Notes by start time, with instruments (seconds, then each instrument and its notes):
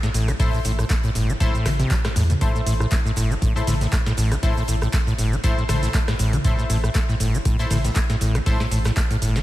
0.03 acid bass A2, snare, closed hi-hat, shaker
0.14 sub bass A1, acid bass A2, closed hi-hat, open hi-hat, shaker
0.28 acid bass E3, cross-stick, closed hi-hat, shaker
0.40 acid bass A2, synth stab E4 A4 C5, kick, closed hi-hat, open hi-hat, shaker
0.53 acid bass A2, shaker
0.65 sub bass A1, acid bass A2, closed hi-hat, open hi-hat, shaker
0.79 acid bass A2, cross-stick, closed hi-hat, shaker
0.89 acid bass A3, kick, snare, clap, closed hi-hat, shaker
1.03 acid bass A2, closed hi-hat, shaker
1.15 sub bass G1, acid bass A2, closed hi-hat, open hi-hat, shaker
1.29 acid bass E3, shaker
1.40 acid bass A2, synth stab E4 A4 C5, kick, closed hi-hat, shaker
1.54 acid bass A2, shaker
1.65 sub bass A1, acid bass C3, cross-stick, snare, closed hi-hat, open hi-hat, mid tom, shaker
1.79 acid bass C3, snare, closed hi-hat, shaker
1.90 acid bass A3, kick, snare, clap, closed hi-hat, shaker
2.05 acid bass A2, cross-stick, snare, closed hi-hat, shaker
2.16 sub bass E2, acid bass A2, closed hi-hat, open hi-hat, shaker
2.30 acid bass A2, closed hi-hat, mid tom, shaker
2.41 acid bass A2, synth stab E4 A4 C5, kick, closed hi-hat, shaker
2.55 acid bass A2, shaker
2.66 sub bass A1, acid bass A2, closed hi-hat, open hi-hat, shaker
2.80 acid bass A2, cross-stick, shaker
2.91 acid bass A3, kick, snare, clap, closed hi-hat, shaker
3.05 acid bass A2, shaker
3.16 sub bass G1, acid bass A2, closed hi-hat, open hi-hat, shaker
3.30 acid bass E3, shaker
3.42 acid bass A2, kick, closed hi-hat, shaker
3.56 acid bass A2, synth stab E4 A4 C5, closed hi-hat, shaker
3.67 sub bass A1, acid bass A2, snare, closed hi-hat, open hi-hat, mid tom, shaker
3.81 acid bass A2, snare, closed hi-hat, shaker
3.92 acid bass A3, kick, snare, clap, closed hi-hat, shaker
4.06 acid bass A2, snare, closed hi-hat, shaker
4.17 sub bass A1, acid bass A2, closed hi-hat, open hi-hat, shaker
4.31 acid bass E3, cross-stick, closed hi-hat, shaker
4.43 acid bass A2, synth stab E4 A4 C5, kick, closed hi-hat, open hi-hat, shaker
4.57 acid bass A2, shaker
4.68 sub bass A1, acid bass A2, closed hi-hat, open hi-hat, shaker
4.82 acid bass A2, cross-stick, closed hi-hat, shaker
4.93 acid bass A3, kick, snare, clap, closed hi-hat, shaker
5.07 acid bass A2, closed hi-hat, shaker
5.18 sub bass G1, acid bass A2, closed hi-hat, open hi-hat, shaker
5.32 acid bass E3, shaker
5.44 acid bass A2, synth stab E4 A4 C5, kick, closed hi-hat, shaker
5.58 acid bass A2, shaker
5.68 sub bass A1, acid bass A2, synth stab E4 A4 C5, cross-stick, snare, closed hi-hat, open hi-hat, mid tom, shaker
5.83 acid bass A2, snare, closed hi-hat, shaker
5.94 acid bass A3, kick, snare, clap, closed hi-hat, shaker
6.08 acid bass A2, cross-stick, snare, closed hi-hat, shaker
6.19 sub bass A1, acid bass A2, closed hi-hat, open hi-hat, shaker
6.33 acid bass E3, closed hi-hat, mid tom, shaker
6.44 acid bass A2, synth stab E4 A4 C5, kick, closed hi-hat, shaker
6.59 acid bass A2, shaker
6.70 sub bass A1, acid bass A2, closed hi-hat, open hi-hat, shaker
6.84 acid bass A2, cross-stick, shaker
6.94 acid bass A3, kick, snare, clap, closed hi-hat, shaker
7.09 acid bass A2, shaker
7.20 sub bass G1, acid bass A2, closed hi-hat, open hi-hat, shaker
7.34 acid bass E3, shaker
7.45 acid bass A2, kick, closed hi-hat, shaker
7.59 acid bass A2, synth stab E4 A4 C5, closed hi-hat, shaker
7.70 sub bass A1, acid bass A2, snare, closed hi-hat, open hi-hat, mid tom, shaker
7.84 acid bass A2, snare, closed hi-hat, shaker
7.94 acid bass A3, kick, snare, clap, closed hi-hat, shaker
8.10 acid bass A2, snare, closed hi-hat, shaker
8.21 sub bass A1, acid bass A2, closed hi-hat, open hi-hat, shaker
8.35 acid bass E3, cross-stick, closed hi-hat, shaker
8.46 acid bass A2, synth stab E4 A4 C5, kick, closed hi-hat, open hi-hat, shaker
8.60 acid bass A2, snare, shaker
8.71 sub bass A1, acid bass A2, closed hi-hat, open hi-hat, shaker
8.85 acid bass A2, cross-stick, snare, closed hi-hat, shaker
8.97 acid bass A3, kick, snare, clap, closed hi-hat, shaker
9.11 acid bass A2, closed hi-hat, shaker
9.22 sub bass G1, acid bass A2, closed hi-hat, open hi-hat, shaker
9.36 acid bass E3, snare, shaker